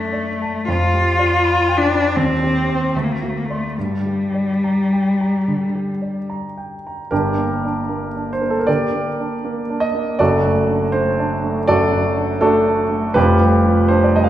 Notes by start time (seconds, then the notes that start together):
Already playing: F#2 A3 A4 D5 A5
0.13 D5
0.42 A5
0.68 F2 F4
0.94 G4
1.19 D5
1.44 B5
1.68 G5
1.77 D4
1.91 B5
2.16 D#2 C4
2.44 G4
2.69 C5 C6
2.96 D2 A3
3.03 A#3
3.12 A3
3.21 A#3 F#4
3.29 A3
3.36 A#3
3.45 A3
3.50 D5 C6
3.77 G2 G3
4.06 G4
4.34 D5
4.64 A#5
4.93 G5
5.21 A#5
5.48 D3
5.75 G4
6.02 D5
6.30 A#5
6.57 G5
6.87 A#5
7.11 G1 G2 D4 G4 A#4
7.38 A#3
7.65 D4
7.89 A#3
8.16 D4
8.33 C5
8.41 A#3 A#4
8.50 A4
8.59 A#4
8.67 D3 G4 A#4 D5
8.95 A#3
9.20 D4
9.45 A#3
9.69 D4
9.80 D#5
9.95 A#3
10.19 F#1 F#2 F#4 A4 D5
10.45 A3
10.69 D4
10.92 A3 C5
11.19 D4
11.44 A3
11.68 F#2 F#4 A4 D5
11.92 F#3
12.17 D4
12.41 A3 D4 F#4 A4
12.66 D4
12.91 A3
13.14 F1 F2 F4 G4 B4
13.41 G3
13.66 F3
13.88 D4 C5
14.03 D5
14.16 G3 D#5
14.24 F5